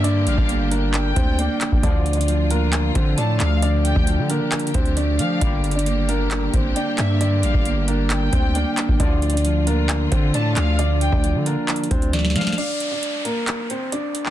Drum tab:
CC |------------------------------------------------------------------------------------------------|------------------------------------------------------------------------------------------------|------------------------------------------------------------------------------------------------|------------------------------------------------------------------------------------------------|
HH |x-----------x-----------x-----------x-----------x-----------x-----------x-----------x-----------|x-----------x---x---x---x-----------x-----------x-----------x-----------x-----------x-----------|x-----------x-----------x-----------x-----------x---x---x---x-----x-----x-----------x-----------|x-----------x---x---x---x-----------x-----------x-----------x-----------x-----------x-----------|
CP |------------------------------------------------x-----------------------------------x-----------|------------------------------------------------x-----------------------------------x-----------|------------------------------------------------x-----------------------------------------------|------------------------------------------------x-----------------------------------x-----------|
SD |------------------------------------------------------------------------------------------------|------------------------------------------------------------------------------------------------|------------------------------------------------------------------------------------------------|------------------------------------------------------------------------------------------------|
BD |------------------o-----------------------------------------o-----------------------------o-----|o-----------------------------------------------------------o-----------------------------------|------------------o-----------------------------------------o-----------------------------------|o-----------------------------------------------------------o-----------------------------------|

CC |------------------------------------------------------------------------------------------------|------------------------------------------------------------------------------------------------|------------------------------------------------------------------------------------------------|x-----------------------------------------------------------------------------------------------|
HH |x-----------x-----------x-----------x-----------x-----------x-----------x-----------x-----------|x-----------x---x---x---x-----------x-----------x-----------x-----------x-----------x-----------|x-----------x-----------x-----------x-----------x---x---x---x-----x-----x-----------x-----------|x-----------x-----------x-----------x-----------x-----------x-----------x-----------x-----------|
CP |------------------------------------------------x-----------------------------------x-----------|------------------------------------------------x-----------------------------------x-----------|------------------------------------------------x-----------------------------------------------|------------------------------------------------x-----------------------------------------x-----|
SD |------------------------------------------------------------------------------------------------|------------------------------------------------------------------------------------------------|------------------------------------------------------------------------o--o--o--o--o--o--o--o--|------------------------------------------------------------------------------------------------|
BD |------------------o-----------------------------------------o-----------------------------o-----|o-----------------------------------------------------------o-----------------------------------|------------------o-----------------------------------------o-----------------------------------|------------------------------------------------------------------------------------------------|